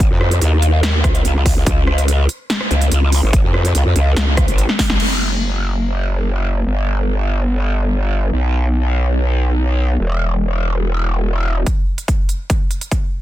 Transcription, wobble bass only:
0.11 F2
0.42 D#2
1.00 D2
1.25 C#2
1.56 C#2
1.67 C#2
2.71 C#2
2.92 C#2
3.23 G#1
3.44 F2
3.75 C#2
3.86 F2
3.96 C#2
4.17 C#2
4.48 G#1
4.90 G#1
5.00 F#1
6.66 G1
8.33 B1
10.00 E1

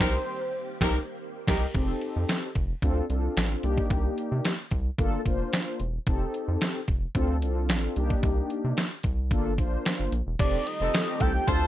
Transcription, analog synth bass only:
0.00 C2
0.81 C2
1.48 C2
1.75 F1
2.16 F2
2.56 F1
2.82 D2
3.10 C2
3.37 A1
3.64 C2
3.90 C2
4.32 C3
4.72 C2
4.98 G1
5.26 F1
5.80 E1
6.07 F1
6.48 F2
6.88 F1
7.15 D2
7.42 C2
7.69 A1
7.97 C2
8.23 C2
8.64 C3
9.04 C2
9.31 G1
9.58 A#1
10.00 G1
10.12 A#1
10.27 E1
10.40 F1
10.81 F1
11.21 C2
11.48 D2

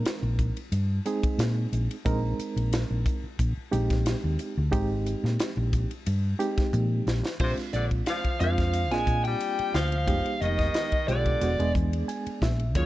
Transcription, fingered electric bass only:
0.23 A#1
0.72 G2
1.38 A#2
1.73 A#1
2.06 A#1
2.39 muted fingered electric bass stroke
2.56 A#1
2.91 A#1
3.24 muted fingered electric bass stroke
3.39 A#1
3.57 muted fingered electric bass stroke
3.73 A#1
4.24 D#2
4.57 D2
4.73 G#1
5.24 A#2
5.57 A#1
6.07 G2
6.74 A#2
7.07 A#1
7.40 A#1
7.58 muted fingered electric bass stroke
7.74 A#1
8.40 F2
8.92 A#1
9.07 A#2
9.59 muted fingered electric bass stroke
9.74 D2
10.07 F1
10.41 F1
11.08 B1
11.41 E1
11.59 E1
11.75 E2
12.26 muted fingered electric bass stroke
12.42 A#1
12.75 D#2

